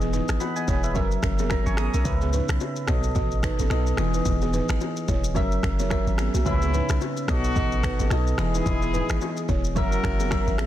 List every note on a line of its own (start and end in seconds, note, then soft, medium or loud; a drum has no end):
0.00 0.21 E1 loud
0.00 0.46 E3 medium
0.00 0.47 B3 medium
0.00 0.08 B3 medium
0.00 0.47 G#4 medium
0.00 0.08 G#4 medium
0.00 0.13 D#5 loud
0.00 shaker soft
0.13 0.23 D#4 medium
0.13 0.22 B4 medium
0.13 low conga medium
0.13 shaker medium
0.28 0.38 G#1 medium
0.28 finger snap medium
0.28 cross-stick loud
0.28 shaker medium
0.40 0.56 F#5 medium
0.40 0.55 B5 medium
0.40 high bongo medium
0.40 shaker medium
0.56 0.83 D#5 medium
0.56 0.82 G#5 medium
0.56 shaker soft
0.68 0.97 E1 loud
0.68 0.78 E4 medium
0.68 0.77 C#5 medium
0.68 kick medium
0.68 low bongo medium
0.68 shaker medium
0.83 1.10 B4 medium
0.83 0.95 E5 medium
0.83 shaker medium
0.94 1.18 F#1 loud
0.94 1.40 F#3 medium
0.94 1.41 C#4 medium
0.94 1.41 A#4 medium
0.94 1.05 A#4 medium
0.94 1.04 E5 medium
0.94 1.42 E5 loud
0.94 kick medium
0.94 low conga medium
0.94 shaker medium
1.11 shaker soft
1.23 1.58 F#1 medium
1.23 1.33 C#4 medium
1.23 1.32 A#4 medium
1.23 finger snap medium
1.23 kick medium
1.23 cross-stick medium
1.23 shaker medium
1.39 1.46 B3 medium
1.39 1.46 G#4 medium
1.39 low bongo medium
1.39 shaker loud
1.50 1.60 C#4 medium
1.50 1.60 A#4 medium
1.50 1.66 E5 medium
1.50 1.65 A#5 medium
1.50 finger snap medium
1.50 kick medium
1.50 cross-stick medium
1.50 high bongo medium
1.50 shaker medium
1.66 1.89 G#1 medium
1.66 1.77 G#5 medium
1.66 1.77 C#6 medium
1.66 shaker soft
1.77 1.88 B3 medium
1.77 1.87 G#4 medium
1.77 1.92 A#5 medium
1.77 1.93 D#6 medium
1.77 finger snap medium
1.77 cross-stick loud
1.77 high bongo soft
1.77 shaker medium
1.94 2.03 B1 medium
1.94 2.01 C#4 medium
1.94 2.01 A#4 medium
1.94 2.05 E5 medium
1.94 2.20 A#5 medium
1.94 shaker medium
2.04 2.41 C#2 loud
2.04 2.73 C#3 medium
2.04 2.73 C#4 medium
2.04 2.74 B4 medium
2.04 2.74 E5 medium
2.04 kick loud
2.04 low conga medium
2.04 shaker medium
2.21 2.29 B3 medium
2.21 2.28 G#4 medium
2.21 shaker soft
2.33 2.43 D#4 medium
2.33 2.42 B4 medium
2.33 low conga medium
2.33 shaker medium
2.49 2.58 B1 medium
2.49 finger snap medium
2.49 cross-stick medium
2.49 shaker medium
2.60 high bongo medium
2.60 shaker medium
2.76 shaker medium
2.87 3.11 B1 loud
2.87 3.55 B2 medium
2.87 3.56 B3 medium
2.87 2.98 F#4 medium
2.87 3.56 A4 medium
2.87 2.97 C#5 medium
2.87 3.56 D#5 loud
2.87 finger snap medium
2.87 kick medium
2.87 cross-stick loud
2.87 low bongo medium
2.87 shaker medium
3.04 shaker medium
3.15 3.51 A1 loud
3.15 3.25 F#4 medium
3.15 3.25 D#5 medium
3.15 kick medium
3.15 low conga medium
3.15 shaker medium
3.31 shaker soft
3.43 3.53 D#4 medium
3.43 3.52 B4 medium
3.43 finger snap medium
3.43 kick medium
3.43 cross-stick medium
3.43 shaker medium
3.59 3.69 A1 medium
3.59 3.66 C#4 medium
3.59 3.66 A4 medium
3.59 low bongo medium
3.59 shaker loud
3.69 3.93 B1 medium
3.69 3.97 B2 medium
3.69 3.96 B3 medium
3.69 3.81 D#4 medium
3.69 3.98 A4 medium
3.69 3.80 B4 medium
3.69 3.98 D#5 medium
3.69 finger snap medium
3.69 cross-stick medium
3.69 high bongo medium
3.69 shaker medium
3.87 shaker soft
3.97 4.21 E1 loud
3.97 4.86 E3 medium
3.97 4.87 B3 medium
3.97 4.08 B3 medium
3.97 4.87 G#4 medium
3.97 4.08 G#4 medium
3.97 4.88 D#5 medium
3.97 finger snap medium
3.97 cross-stick loud
3.97 high bongo soft
3.97 shaker medium
4.14 4.22 D#4 medium
4.14 4.21 B4 medium
4.14 shaker medium
4.25 4.61 E1 loud
4.25 kick loud
4.25 low conga medium
4.25 shaker medium
4.41 4.49 B3 medium
4.41 4.49 G#4 medium
4.41 high bongo medium
4.41 shaker soft
4.53 4.63 D#4 medium
4.53 4.63 B4 medium
4.53 low conga medium
4.53 shaker medium
4.69 4.79 G#1 medium
4.69 finger snap medium
4.69 cross-stick medium
4.69 shaker medium
4.81 high bongo medium
4.81 shaker medium
4.97 shaker medium
5.08 5.38 E1 medium
5.08 5.18 E4 medium
5.08 5.17 C#5 medium
5.08 kick medium
5.08 low bongo medium
5.08 shaker medium
5.24 shaker medium
5.34 5.58 F#1 loud
5.34 5.81 F#3 medium
5.34 5.81 C#4 medium
5.34 5.82 A#4 medium
5.34 5.45 A#4 medium
5.34 5.45 E5 medium
5.34 5.82 E5 loud
5.34 kick medium
5.34 low conga medium
5.34 shaker medium
5.52 shaker soft
5.63 5.99 F#1 medium
5.63 5.73 C#4 medium
5.63 5.72 A#4 medium
5.63 finger snap medium
5.63 kick loud
5.63 cross-stick medium
5.63 shaker medium
5.79 5.87 E4 medium
5.79 5.86 C#5 medium
5.79 low bongo medium
5.79 shaker medium
5.89 6.24 F#3 medium
5.89 6.25 C#4 medium
5.89 6.01 C#4 medium
5.89 6.00 A#4 medium
5.89 6.25 A#4 medium
5.89 6.25 E5 medium
5.89 finger snap medium
5.89 kick medium
5.89 cross-stick medium
5.89 high bongo medium
5.89 shaker medium
6.07 6.29 G#1 medium
6.07 shaker soft
6.18 6.28 B3 medium
6.18 6.28 G#4 medium
6.18 finger snap medium
6.18 cross-stick loud
6.18 high bongo soft
6.18 shaker medium
6.34 6.44 B1 medium
6.34 6.42 A#3 medium
6.34 6.41 F#4 medium
6.34 low bongo medium
6.34 shaker medium
6.45 6.82 C#2 loud
6.45 7.13 C#3 medium
6.45 7.00 B3 medium
6.45 7.14 C#4 medium
6.45 7.00 C#4 medium
6.45 7.00 E4 medium
6.45 7.14 B4 medium
6.45 7.14 E5 medium
6.45 kick loud
6.45 low conga medium
6.45 shaker medium
6.62 6.69 B3 medium
6.62 6.68 G#4 medium
6.62 shaker soft
6.74 6.83 D#4 medium
6.74 6.83 B4 medium
6.74 low conga medium
6.74 shaker medium
6.89 6.99 B1 loud
6.89 finger snap medium
6.89 cross-stick medium
6.89 shaker medium
7.01 high bongo medium
7.01 shaker medium
7.17 shaker soft
7.27 7.51 B1 loud
7.27 7.96 B2 medium
7.27 7.96 B3 medium
7.27 8.09 B3 medium
7.27 8.09 D#4 medium
7.27 8.09 F#4 medium
7.27 7.38 F#4 medium
7.27 7.96 A4 medium
7.27 7.38 C#5 medium
7.27 7.97 D#5 loud
7.27 finger snap medium
7.27 kick medium
7.27 cross-stick loud
7.27 low bongo medium
7.27 shaker medium
7.44 shaker medium
7.55 7.92 A1 loud
7.55 7.66 F#4 medium
7.55 7.65 D#5 medium
7.55 kick medium
7.55 low conga medium
7.55 shaker medium
7.72 shaker soft
7.83 7.93 D#4 medium
7.83 7.93 B4 medium
7.83 finger snap medium
7.83 kick loud
7.83 cross-stick medium
7.83 shaker medium
7.99 8.09 A1 medium
7.99 8.07 C#4 medium
7.99 8.06 A4 medium
7.99 low bongo medium
7.99 shaker medium
8.10 8.33 B1 loud
8.10 8.38 B2 medium
8.10 8.37 B3 medium
8.10 8.21 D#4 medium
8.10 8.39 A4 medium
8.10 8.20 B4 medium
8.10 8.39 D#5 loud
8.10 finger snap medium
8.10 cross-stick medium
8.10 high bongo medium
8.10 shaker medium
8.27 shaker soft
8.38 8.61 E1 loud
8.38 9.27 E3 medium
8.38 9.46 G#3 medium
8.38 9.27 B3 medium
8.38 8.48 B3 medium
8.38 9.46 E4 medium
8.38 8.48 G#4 medium
8.38 9.46 G#4 medium
8.38 9.28 G#4 medium
8.38 9.28 D#5 loud
8.38 finger snap medium
8.38 cross-stick loud
8.38 high bongo soft
8.38 shaker medium
8.55 8.62 D#4 medium
8.55 8.61 B4 medium
8.55 shaker medium
8.66 9.02 E1 loud
8.66 kick loud
8.66 low conga medium
8.66 shaker medium
8.82 8.89 B3 medium
8.82 8.89 G#4 medium
8.82 shaker soft
8.94 9.03 D#4 medium
8.94 9.03 B4 medium
8.94 low conga medium
8.94 shaker medium
9.09 9.19 G#1 medium
9.09 finger snap medium
9.09 cross-stick medium
9.09 shaker medium
9.21 high bongo medium
9.21 shaker medium
9.37 shaker soft
9.49 9.78 E1 medium
9.49 9.58 E4 medium
9.49 9.58 C#5 medium
9.49 kick medium
9.49 low bongo medium
9.49 shaker medium
9.64 shaker medium
9.75 9.99 F#1 loud
9.75 10.21 F#3 medium
9.75 10.22 C#4 medium
9.75 10.57 E4 medium
9.75 10.57 F#4 medium
9.75 10.57 A#4 medium
9.75 10.22 A#4 medium
9.75 9.86 A#4 medium
9.75 9.85 E5 medium
9.75 10.23 E5 loud
9.75 kick medium
9.75 low conga medium
9.75 shaker medium
9.92 shaker soft
10.04 10.39 F#1 medium
10.04 10.13 C#4 medium
10.04 10.13 A#4 medium
10.04 finger snap medium
10.04 kick loud
10.04 cross-stick loud
10.04 shaker medium
10.20 10.27 B3 medium
10.20 10.26 G#4 medium
10.20 low bongo medium
10.20 shaker loud
10.30 10.65 F#3 medium
10.30 10.65 C#4 medium
10.30 10.41 C#4 medium
10.30 10.40 A#4 medium
10.30 10.65 A#4 medium
10.30 10.66 E5 loud
10.30 finger snap medium
10.30 kick loud
10.30 cross-stick medium
10.30 high bongo medium
10.30 shaker medium
10.47 10.66 G#1 medium
10.47 shaker soft
10.58 10.66 B3 medium
10.58 10.66 G#4 medium
10.58 finger snap medium
10.58 cross-stick loud
10.58 high bongo soft
10.58 shaker medium